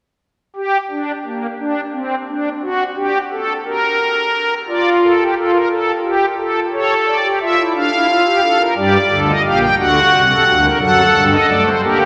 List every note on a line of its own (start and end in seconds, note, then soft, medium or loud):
0.56 0.77 G4 medium
0.90 1.12 D4 medium
1.25 1.46 A#3 medium
1.59 1.80 D4 medium
1.93 2.15 C4 medium
2.27 2.49 D4 medium
2.62 2.84 F#4 medium
2.96 3.18 G4 medium
3.31 3.53 A4 medium
3.66 4.54 A#4 medium
4.68 5.12 F4 medium
4.68 4.89 D5 medium
5.02 5.23 A4 medium
5.19 5.34 G4 medium
5.36 5.57 F4 medium
5.36 5.51 A4 medium
5.53 5.68 A#4 medium
5.70 5.91 A4 medium
6.04 6.25 G4 medium
6.38 6.59 A4 medium
6.72 7.16 A4 medium
6.72 6.94 C#5 medium
7.07 7.28 D5 medium
7.24 7.39 G4 medium
7.41 7.55 F4 medium
7.41 7.62 E5 medium
7.58 7.73 E4 medium
7.75 7.89 D4 medium
7.75 8.62 F5 medium
7.92 8.06 E4 medium
8.08 8.23 F4 medium
8.25 8.40 G4 medium
8.43 8.57 A4 medium
8.59 8.74 A#4 medium
8.76 8.97 G2 medium
8.76 8.97 G3 medium
8.76 8.97 G4 medium
8.76 9.20 D5 medium
9.10 9.31 D2 medium
9.10 9.31 D3 medium
9.10 9.31 A4 medium
9.27 9.42 D#5 medium
9.44 9.65 A#1 medium
9.44 9.65 A#2 medium
9.44 9.65 G4 medium
9.44 9.59 F5 medium
9.61 9.75 G5 medium
9.78 9.99 D2 medium
9.78 9.99 D3 medium
9.78 10.22 F#4 medium
9.78 10.66 F#5 medium
10.12 10.33 C2 medium
10.12 10.33 C3 medium
10.29 10.44 A4 medium
10.46 10.68 D2 medium
10.46 10.67 D3 medium
10.46 10.61 F#4 medium
10.64 10.78 A#4 medium
10.80 11.01 F#2 medium
10.80 11.01 F#3 medium
10.80 11.69 A4 medium
10.80 11.24 F#5 medium
11.14 11.35 G2 medium
11.14 11.35 G3 medium
11.31 11.46 D#5 medium
11.48 11.70 A3 medium
11.48 11.63 D5 medium
11.65 11.80 C5 medium
11.82 12.05 A#3 medium
11.82 12.05 G4 medium
11.82 11.98 A#4 medium
12.00 12.05 C5 medium